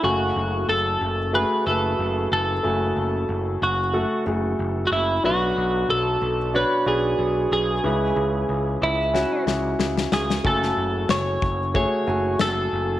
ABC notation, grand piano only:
X:1
M:4/4
L:1/8
Q:"Swing 16ths" 1/4=92
K:F#m
V:1 name="Grand piano"
[C,A,Fg]3 z [A,FG] [A,FB]3 | [C,A,Fg]3 z [A,FA] [A,FG]3 | [B,,F,DFB]3 z [DFc] [DFB]3 | [C,G,CEB]3 z [CEF] [CEF]3 |
[C,A,Fg]3 z [A,FG] [A,Fg]3 |]